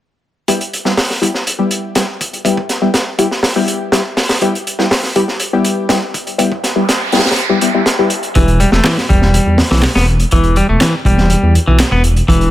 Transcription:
0.48 G3 B3 E4 G4, kick, closed hi-hat
0.61 closed hi-hat
0.73 closed hi-hat
0.85 G3 B3 E4 G4, snare
0.97 snare, open hi-hat
1.10 snare
1.22 G3 B3 E4 G4, kick, closed hi-hat
1.34 snare
1.47 closed hi-hat
1.59 G3 B3 E4 G4
1.71 closed hi-hat
1.95 G3 B3 E4 G4, snare, closed hi-hat
2.21 kick, closed hi-hat
2.33 closed hi-hat
2.45 G3 B3 E4 G4, kick, closed hi-hat
2.57 kick
2.69 snare, closed hi-hat
2.82 G3 B3 E4 G4
2.94 snare, closed hi-hat
3.18 G3 B3 E4 G4, kick, closed hi-hat
3.31 snare
3.43 snare, open hi-hat
3.56 G3 B3 E4 G4
3.68 closed hi-hat
3.92 G3 B3 E4 G4, snare, closed hi-hat
4.17 snare, open hi-hat
4.29 snare, open hi-hat
4.42 G3 B3 E4 G4, kick, closed hi-hat
4.55 closed hi-hat
4.67 closed hi-hat
4.79 G3 B3 E4 G4, snare
4.91 snare, open hi-hat
5.03 snare
5.16 G3 B3 E4 G4, kick, closed hi-hat
5.28 snare
5.40 closed hi-hat
5.53 G3 B3 E4 G4
5.65 closed hi-hat
5.89 G3 B3 E4 G4, snare, closed hi-hat
6.14 kick, closed hi-hat
6.27 closed hi-hat
6.38 G3 B3 E4 G4, kick, closed hi-hat, noise sweep
6.52 kick
6.64 snare, closed hi-hat
6.76 G3 B3 E4 G4
6.89 snare, closed hi-hat
7.12 G3 B3 E4 G4, snare, open hi-hat
7.19 snare, open hi-hat
7.25 snare, open hi-hat
7.31 snare, open hi-hat
7.36 closed hi-hat
7.49 G3 B3 E4 G4
7.61 G3 B3 E4 G4, closed hi-hat
7.74 G3 B3 E4 G4
7.86 snare, closed hi-hat
7.99 G3 B3 E4 G4
8.10 closed hi-hat
8.23 closed hi-hat
8.35 E1 E3, kick, closed hi-hat
8.48 closed hi-hat
8.60 G3, closed hi-hat
8.72 E1 A3, snare
8.84 E3, snare, clap, open hi-hat
8.98 snare
9.09 E1 G3, kick, closed hi-hat
9.22 snare
9.34 closed hi-hat
9.46 E2
9.58 snare, open hi-hat
9.71 B1 E3, snare, open hi-hat
9.83 snare, clap, open hi-hat
9.95 E1 B3, snare, open hi-hat
10.08 closed hi-hat
10.20 closed hi-hat
10.31 E1 E3, kick, closed hi-hat
10.44 closed hi-hat
10.56 G3, closed hi-hat
10.69 E1 A3
10.81 E3, snare, clap, closed hi-hat
11.05 E1 G3, kick, closed hi-hat
11.18 snare
11.30 closed hi-hat
11.43 E2
11.55 closed hi-hat
11.67 B1 E3
11.79 snare, clap, closed hi-hat
11.92 E1 B3
12.04 closed hi-hat
12.16 closed hi-hat
12.28 E1 E3, kick, closed hi-hat
12.41 closed hi-hat

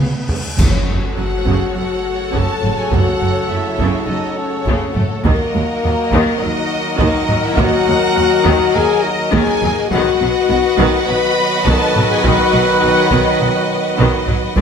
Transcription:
Already playing: B3, cymbal swell
0.00 C#2 G#4 C#5 F5, taiko mid
0.29 C#2 G#4 B4 C#5, taiko low
0.57 F#1 F#2 C#3 F#3 A3 C#4 F#4 A4 C#5 F#5, concert bass drum, taiko, crash, impact
0.88 F#1 F#2 A3
1.17 F#1 F#2 F#3 F#4 F#5
1.46 F#1 F#2 C#3, taiko
1.76 F#1 F#2 A3 F#4 F#5
2.33 F#1 F#2 C#3 A4 A5, taiko
2.63 F#1 F#2 A3, taiko low-mid
2.77 G#4 G#5
2.92 F#1 F#2 C#3 F#4 F#5, taiko
3.21 F#1 F#2 A3
3.49 F#1 F#2 F#3 E4 E5
3.78 F#1 F#2 C#3, taiko
4.07 F#1 F#2 A3 D#4 D#5
4.37 C#4 C#5
4.66 F#1 F#2 C#3, taiko
4.94 F#1 F#2 A3 A4, taiko low-mid
5.24 D#2 D#3 F#3 A#3 F#4 A#4 D#5 F#5, taiko
5.55 D#2 F#3
5.83 D#2 D#3
6.12 D#2 D#3, taiko
6.41 D#2 F#3 D#4 D#5
6.99 D#2 D#3 D#4 D#5, taiko
7.29 D#2 F#3, taiko low-mid
7.43 E4 E5
7.57 D#2 D#3 F#4 F#5, taiko
7.86 D#2 F#3
8.15 D#2 D#3
8.44 D#2 D#3, taiko
8.74 D#2 F#3 G#4 G#5
9.03 D#4 D#5
9.32 D#2 D#3 G#4 G#5, taiko
9.62 D#2 F#3, taiko low-mid
9.89 B1 B2 D#3 F#3 F#4 B4 D#5, taiko
9.93 B3 F#4 D#5 F#5
10.20 B1 B2 F#3
10.49 B1 B2 D#3
10.78 B1 B2 D#3, taiko
11.06 B1 B2 F#3 B4 B5
11.65 B1 B2 D#3 A4 A5, taiko
11.95 B1 B2 F#3, taiko low-mid
12.10 G#4 G#5
12.24 B1 B2 D#3 F#4 F#5, taiko
12.53 B1 B2 F#3
12.82 B1 B2 D#3 F#4 F#5
13.11 B1 B2 D#3, taiko
13.40 B1 B2 F#3
13.97 B1 B2 D#3, taiko
14.27 B1 B2 F#3, taiko low-mid
14.55 G1 G2 D3 G3 B3 E4 G4 B4 D5 E5 G5, taiko

